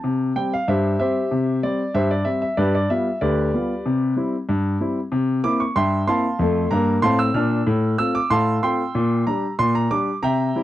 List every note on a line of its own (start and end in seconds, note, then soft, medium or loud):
0.00 0.31 C3 medium
0.00 0.33 A5 medium
0.36 0.53 G3 soft
0.36 0.54 C4 medium
0.36 0.52 G5 medium
0.54 0.69 F5 medium
0.68 0.95 G2 medium
0.68 0.98 G4 medium
0.68 0.98 C5 medium
0.68 0.98 E5 medium
1.00 1.17 G3 soft
1.00 1.17 C4 medium
1.00 1.60 G4 medium
1.00 1.60 C5 medium
1.00 1.60 E5 medium
1.31 1.58 C3 medium
1.63 1.81 G3 soft
1.63 1.81 C4 medium
1.63 1.93 D5 medium
1.94 2.21 G2 medium
1.94 2.10 G4 medium
1.94 2.10 C5 medium
1.94 2.10 E5 medium
2.11 2.27 D5 medium
2.25 2.43 G3 soft
2.25 2.43 C4 medium
2.25 2.40 E5 medium
2.42 2.58 E5 medium
2.57 2.85 G2 medium
2.57 2.73 G4 medium
2.57 2.73 B4 medium
2.57 2.73 D5 medium
2.75 2.90 D5 medium
2.90 3.07 G3 soft
2.90 3.08 B3 soft
2.90 3.08 F4 medium
2.90 3.20 E5 medium
3.21 3.48 D2 medium
3.21 4.13 G4 medium
3.21 4.13 B4 medium
3.21 4.13 D5 medium
3.54 3.71 G3 soft
3.54 3.72 B3 soft
3.54 3.72 F4 soft
3.86 4.12 C3 medium
4.16 4.34 G3 soft
4.16 4.34 C4 medium
4.16 4.35 E4 soft
4.49 4.76 G2 medium
4.80 4.98 G3 soft
4.80 4.98 C4 medium
4.80 4.98 E4 medium
5.12 5.39 C3 medium
5.44 5.61 A#3 medium
5.44 5.62 C4 medium
5.44 5.62 E4 medium
5.44 5.60 D6 medium
5.60 5.76 C#6 medium
5.76 6.03 G2 medium
5.76 6.06 E5 medium
5.76 6.06 G5 medium
5.76 6.01 C6 medium
6.07 6.25 A#3 medium
6.07 6.25 C4 medium
6.07 6.26 E4 medium
6.07 6.68 F5 medium
6.07 6.68 A5 medium
6.07 6.68 C6 medium
6.39 6.65 F2 medium
6.39 6.66 A3 medium
6.71 6.97 G2 medium
6.71 6.98 A#3 medium
6.71 6.96 A#5 medium
7.02 7.28 A2 medium
7.02 7.29 C4 medium
7.02 7.18 F5 medium
7.02 7.18 A5 medium
7.02 7.19 C6 loud
7.19 7.35 E6 loud
7.34 7.60 A#2 medium
7.34 7.61 D4 medium
7.34 7.60 F6 medium
7.67 7.94 A2 medium
7.98 8.16 A3 soft
7.98 8.17 C4 medium
7.98 8.17 F4 medium
7.98 8.14 E6 loud
8.15 8.31 D6 medium
8.30 8.58 A2 medium
8.30 8.61 F5 medium
8.30 8.61 A5 medium
8.30 8.56 C6 loud
8.63 8.80 A3 soft
8.63 8.81 C4 soft
8.63 8.81 F4 medium
8.63 9.23 G5 medium
8.63 9.23 C6 medium
8.95 9.22 A#2 medium
9.27 9.44 G3 medium
9.27 9.45 D4 medium
9.27 9.45 G4 medium
9.27 9.52 A#5 medium
9.59 9.86 A#2 medium
9.59 9.75 C6 loud
9.75 9.91 A#5 medium
9.91 10.08 G3 soft
9.91 10.09 D4 medium
9.91 10.09 G4 medium
9.91 10.16 D6 medium
10.23 10.50 C3 medium
10.23 10.63 E5 medium
10.23 10.63 G5 medium
10.23 10.63 A#5 medium
10.55 10.63 G3 medium
10.55 10.63 C4 medium
10.55 10.63 E4 medium